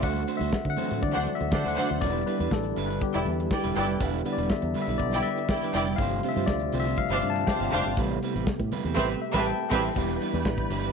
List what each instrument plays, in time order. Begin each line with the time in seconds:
Already playing: tonewheel organ C4
0.02 fingered electric bass D2, tonewheel organ D3 A3 F#4, clean electric guitar A3 D4 F#4 C5, tine electric piano F#5, kick, closed hi-hat, muted conga, shaker
0.14 closed hi-hat, high conga, shaker
0.27 clean electric guitar A3 D4 F#4 C5, closed hi-hat, shaker
0.37 fingered electric bass D2, clean electric guitar F#4 C5, tine electric piano E5, closed hi-hat, high conga
0.41 clean electric guitar A3 D4, shaker
0.52 muted clean electric guitar stroke, kick, snare, shaker
0.65 fingered electric bass D3, muted clean electric guitar stroke, kick, closed hi-hat, shaker
0.70 tine electric piano F#5
0.77 tine electric piano E3 F#3 C4, clean electric guitar A3 D4 F#4 C5, closed hi-hat, low conga, shaker
0.90 fingered electric bass A2, clean electric guitar A3 D4 F#4 C5, snare, closed hi-hat, shaker
1.01 fingered electric bass D3, tine electric piano D5, muted clean electric guitar stroke, kick, closed hi-hat, muted conga, high conga, shaker
1.13 fingered electric bass D2, string section D4 C5 F#5, muted clean electric guitar stroke, closed hi-hat, shaker
1.26 closed hi-hat, high conga, shaker
1.35 tine electric piano E5
1.39 fingered electric bass D2, muted clean electric guitar stroke, closed hi-hat, shaker
1.51 fingered electric bass D3, string section D4 C5 F#5, muted clean electric guitar stroke, kick, snare, shaker
1.63 fingered electric bass D2, clean electric guitar D4 F#4 C5, closed hi-hat, high conga, shaker
1.67 clean electric guitar A3, tine electric piano F#5
1.76 clean electric guitar A3 D4 F#4 C5, string section D4 C5 F#5, open hi-hat, low conga
1.88 fingered electric bass D2, muted clean electric guitar stroke, closed hi-hat, shaker
1.99 fingered electric bass E1, tine electric piano D3 G3 B3 D5, tonewheel organ G3 E4, clean electric guitar G3 D4, kick, closed hi-hat, muted conga, shaker
2.03 tonewheel organ B3, clean electric guitar E4 B4
2.14 closed hi-hat, high conga, shaker
2.26 clean electric guitar G3 D4 E4 B4, tine electric piano B4, closed hi-hat, shaker
2.39 fingered electric bass E2, clean electric guitar G3 D4 E4 B4, closed hi-hat, high conga, shaker
2.50 fingered electric bass A1, tine electric piano A4, kick, snare, shaker
2.63 muted clean electric guitar stroke, closed hi-hat, shaker
2.76 fingered electric bass G1, clean electric guitar G3 D4 E4 B4, closed hi-hat, low conga, shaker
2.86 clean electric guitar E4 B4, tine electric piano B4
2.90 clean electric guitar G3 D4, closed hi-hat, shaker
3.01 tine electric piano D3 G3 B3 G4, muted clean electric guitar stroke, kick, closed hi-hat, muted conga, high conga, shaker
3.14 fingered electric bass E1, string section E4 D5 G5, muted clean electric guitar stroke, closed hi-hat, shaker
3.25 fingered electric bass E2, closed hi-hat, muted conga, high conga, shaker
3.40 muted clean electric guitar stroke, closed hi-hat, shaker
3.51 string section E4 D5 G5, muted clean electric guitar stroke, kick, snare, shaker
3.63 fingered electric bass E1, clean electric guitar G3 D4 E4 B4, closed hi-hat, high conga, shaker
3.75 fingered electric bass G1, clean electric guitar G3 D4 E4 B4, string section E4 D5 G5, tine electric piano B4, open hi-hat, low conga
3.88 fingered electric bass F1, muted clean electric guitar stroke, closed hi-hat, shaker
4.01 fingered electric bass E1, clean electric guitar G3 D4 E4 B4, kick, closed hi-hat, shaker
4.12 closed hi-hat, high conga, shaker
4.25 tine electric piano D3 G3 B3, clean electric guitar G3 D4 E4 B4, closed hi-hat, shaker
4.33 tine electric piano D5
4.37 fingered electric bass E1, clean electric guitar G3 D4 E4 B4, closed hi-hat, high conga, shaker
4.50 tine electric piano E5, muted clean electric guitar stroke, kick, snare, shaker
4.62 fingered electric bass E2, muted clean electric guitar stroke, closed hi-hat, shaker
4.74 clean electric guitar G3 D4 E4 B4, closed hi-hat, muted conga, low conga, shaker
4.82 tine electric piano E5
4.87 fingered electric bass B1, clean electric guitar G3 D4 E4 B4, snare, closed hi-hat, shaker
4.98 fingered electric bass B1, tine electric piano D5, kick, closed hi-hat, high conga, shaker
5.11 string section E4 D5 G5, muted clean electric guitar stroke, closed hi-hat, shaker
5.23 tine electric piano E5, closed hi-hat, high conga, shaker
5.38 muted clean electric guitar stroke, closed hi-hat, shaker
5.48 string section E4 D5 G5, muted clean electric guitar stroke, kick, snare, shaker
5.61 clean electric guitar G3 D4 E4 B4, closed hi-hat, high conga, shaker
5.72 fingered electric bass F1, clean electric guitar G3 D4 E4 B4, string section E4 D5 G5, tine electric piano G5, open hi-hat, muted conga, low conga
5.87 muted clean electric guitar stroke, closed hi-hat, shaker
5.96 fingered electric bass G1, tine electric piano C3 F3 A3 F5, tonewheel organ D3 C4 F4, kick, closed hi-hat, muted conga, shaker
6.01 clean electric guitar C4 F4 G4 C5
6.10 closed hi-hat, high conga, shaker
6.23 clean electric guitar C4 F4 G4 C5, closed hi-hat, muted conga, shaker
6.28 tine electric piano E5
6.36 fingered electric bass G2, clean electric guitar C4 F4 G4 C5, closed hi-hat, high conga, shaker
6.46 fingered electric bass D2, tine electric piano D5, muted clean electric guitar stroke, kick, snare, muted conga, shaker
6.60 muted clean electric guitar stroke, closed hi-hat, shaker
6.72 fingered electric bass C2, tine electric piano C3 F3 A3, clean electric guitar C4 F4 G4 C5, closed hi-hat, muted conga, low conga, shaker
6.80 tine electric piano E5
6.84 clean electric guitar C4 F4 G4 C5, snare, closed hi-hat, shaker
6.97 tine electric piano F5, muted clean electric guitar stroke, kick, closed hi-hat, high conga, shaker
7.09 fingered electric bass G1, string section D4 C5 F5, muted clean electric guitar stroke, closed hi-hat, shaker
7.14 tine electric piano F5
7.22 fingered electric bass G2, closed hi-hat, high conga, shaker
7.30 tine electric piano A5
7.36 muted clean electric guitar stroke, closed hi-hat, shaker
7.47 string section D4 C5 F5, tine electric piano G5, muted clean electric guitar stroke, kick, snare, shaker
7.60 fingered electric bass G1, clean electric guitar C4 F4 G4 C5, closed hi-hat, high conga, shaker
7.72 fingered electric bass F1, clean electric guitar C4 F4 G4 C5, string section D4 C5 F5, open hi-hat, muted conga, low conga
7.85 fingered electric bass G1, muted clean electric guitar stroke, closed hi-hat, shaker
7.96 fingered electric bass A1, tine electric piano C3 G3 B3, tonewheel organ C3 A3 B3 G4, clean electric guitar G3 C4 E4 B4, kick, closed hi-hat, muted conga, shaker
8.09 closed hi-hat, high conga, shaker
8.23 clean electric guitar G3 C4 E4 B4, closed hi-hat, shaker
8.34 fingered electric bass A1, clean electric guitar G3 C4 E4 B4, closed hi-hat, high conga, shaker
8.46 kick, snare, shaker
8.59 fingered electric bass A2, muted clean electric guitar stroke, kick, closed hi-hat, shaker
8.71 clean electric guitar G3 C4 E4 B4, closed hi-hat, muted conga, low conga, shaker
8.84 fingered electric bass E2, clean electric guitar G3 C4 E4 B4, snare, closed hi-hat, shaker
8.95 fingered electric bass A1, string section C4 B4 E5, horn section C4 E4 G4 C5, clean electric guitar E4 B4, kick, snare, crash
8.99 clean electric guitar G3 C4
9.22 tine electric piano E5
9.33 fingered electric bass A1, clean electric guitar G3 C4 E4 B4, horn section B3 E4 G4 B4, string section C4 B4 E5, kick, snare
9.39 tine electric piano A5
9.47 tine electric piano G5
9.70 fingered electric bass A1, clean electric guitar G3 C4 E4 B4, horn section B3 E4 G4 B4, string section C4 B4 E5, kick, snare, crash
9.94 fingered electric bass E1, tine electric piano E3 G3 B3 D4 G4, clean electric guitar G3 D4 E4, tonewheel organ E4 B4 D5 G5, string section B4 B5, kick, crash, muted conga, shaker
9.98 clean electric guitar B4
10.07 closed hi-hat, high conga, shaker
10.21 clean electric guitar G3 D4 E4 B4, closed hi-hat, muted conga
10.33 fingered electric bass E2, clean electric guitar G3 D4 E4 B4, closed hi-hat, high conga, shaker
10.45 fingered electric bass A1, muted clean electric guitar stroke, kick, snare, shaker
10.58 muted clean electric guitar stroke, kick, closed hi-hat, high conga, shaker
10.70 fingered electric bass G1, clean electric guitar G3 D4 E4 B4, closed hi-hat, muted conga, low conga
10.83 clean electric guitar G3 D4 E4 B4, closed hi-hat, shaker